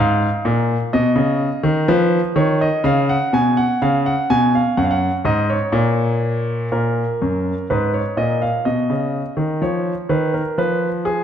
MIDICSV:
0, 0, Header, 1, 2, 480
1, 0, Start_track
1, 0, Key_signature, 5, "major"
1, 0, Tempo, 964630
1, 1423, Time_signature, 4, 2, 24, 8
1, 5592, End_track
2, 0, Start_track
2, 0, Title_t, "Grand piano"
2, 0, Program_c, 0, 0
2, 0, Note_on_c, 0, 44, 94
2, 0, Note_on_c, 0, 77, 85
2, 132, Note_off_c, 0, 44, 0
2, 224, Note_on_c, 0, 46, 87
2, 372, Note_off_c, 0, 46, 0
2, 450, Note_off_c, 0, 77, 0
2, 464, Note_on_c, 0, 75, 77
2, 466, Note_on_c, 0, 47, 90
2, 575, Note_on_c, 0, 49, 88
2, 581, Note_off_c, 0, 47, 0
2, 726, Note_off_c, 0, 49, 0
2, 813, Note_on_c, 0, 51, 91
2, 929, Note_off_c, 0, 75, 0
2, 934, Note_off_c, 0, 51, 0
2, 937, Note_on_c, 0, 53, 101
2, 938, Note_on_c, 0, 71, 76
2, 1088, Note_off_c, 0, 53, 0
2, 1088, Note_off_c, 0, 71, 0
2, 1173, Note_on_c, 0, 51, 93
2, 1175, Note_on_c, 0, 73, 80
2, 1295, Note_off_c, 0, 73, 0
2, 1300, Note_on_c, 0, 75, 73
2, 1325, Note_off_c, 0, 51, 0
2, 1413, Note_on_c, 0, 49, 100
2, 1418, Note_off_c, 0, 75, 0
2, 1419, Note_on_c, 0, 77, 84
2, 1537, Note_off_c, 0, 77, 0
2, 1539, Note_on_c, 0, 78, 78
2, 1565, Note_off_c, 0, 49, 0
2, 1657, Note_on_c, 0, 47, 84
2, 1658, Note_off_c, 0, 78, 0
2, 1661, Note_on_c, 0, 80, 78
2, 1777, Note_on_c, 0, 78, 77
2, 1779, Note_off_c, 0, 80, 0
2, 1808, Note_off_c, 0, 47, 0
2, 1897, Note_off_c, 0, 78, 0
2, 1900, Note_on_c, 0, 49, 91
2, 1900, Note_on_c, 0, 77, 81
2, 2019, Note_off_c, 0, 77, 0
2, 2021, Note_on_c, 0, 78, 76
2, 2051, Note_off_c, 0, 49, 0
2, 2139, Note_off_c, 0, 78, 0
2, 2140, Note_on_c, 0, 47, 91
2, 2140, Note_on_c, 0, 80, 87
2, 2259, Note_off_c, 0, 80, 0
2, 2264, Note_on_c, 0, 77, 76
2, 2291, Note_off_c, 0, 47, 0
2, 2375, Note_on_c, 0, 78, 75
2, 2376, Note_on_c, 0, 42, 82
2, 2381, Note_off_c, 0, 77, 0
2, 2400, Note_off_c, 0, 78, 0
2, 2410, Note_on_c, 0, 77, 70
2, 2442, Note_on_c, 0, 78, 76
2, 2450, Note_off_c, 0, 77, 0
2, 2528, Note_off_c, 0, 42, 0
2, 2552, Note_off_c, 0, 78, 0
2, 2611, Note_on_c, 0, 44, 81
2, 2614, Note_on_c, 0, 75, 79
2, 2735, Note_on_c, 0, 73, 72
2, 2736, Note_off_c, 0, 75, 0
2, 2765, Note_off_c, 0, 44, 0
2, 2848, Note_on_c, 0, 46, 95
2, 3324, Note_off_c, 0, 46, 0
2, 3324, Note_off_c, 0, 73, 0
2, 3343, Note_on_c, 0, 46, 74
2, 3344, Note_on_c, 0, 70, 65
2, 3494, Note_off_c, 0, 46, 0
2, 3592, Note_on_c, 0, 42, 69
2, 3741, Note_off_c, 0, 42, 0
2, 3814, Note_off_c, 0, 70, 0
2, 3831, Note_on_c, 0, 71, 67
2, 3833, Note_on_c, 0, 44, 73
2, 3948, Note_off_c, 0, 71, 0
2, 3950, Note_on_c, 0, 73, 59
2, 3982, Note_off_c, 0, 44, 0
2, 4065, Note_on_c, 0, 46, 70
2, 4067, Note_off_c, 0, 73, 0
2, 4067, Note_on_c, 0, 75, 67
2, 4185, Note_off_c, 0, 75, 0
2, 4188, Note_on_c, 0, 77, 65
2, 4216, Note_off_c, 0, 46, 0
2, 4306, Note_off_c, 0, 77, 0
2, 4306, Note_on_c, 0, 75, 64
2, 4308, Note_on_c, 0, 47, 66
2, 4426, Note_off_c, 0, 47, 0
2, 4427, Note_on_c, 0, 49, 66
2, 4576, Note_off_c, 0, 49, 0
2, 4662, Note_on_c, 0, 51, 73
2, 4772, Note_off_c, 0, 75, 0
2, 4781, Note_off_c, 0, 51, 0
2, 4785, Note_on_c, 0, 53, 71
2, 4788, Note_on_c, 0, 73, 65
2, 4934, Note_off_c, 0, 53, 0
2, 4936, Note_off_c, 0, 73, 0
2, 5023, Note_on_c, 0, 51, 80
2, 5024, Note_on_c, 0, 71, 69
2, 5142, Note_off_c, 0, 71, 0
2, 5144, Note_on_c, 0, 70, 62
2, 5172, Note_off_c, 0, 51, 0
2, 5262, Note_off_c, 0, 70, 0
2, 5264, Note_on_c, 0, 53, 71
2, 5267, Note_on_c, 0, 71, 82
2, 5415, Note_off_c, 0, 71, 0
2, 5499, Note_on_c, 0, 68, 81
2, 5592, Note_off_c, 0, 53, 0
2, 5592, Note_off_c, 0, 68, 0
2, 5592, End_track
0, 0, End_of_file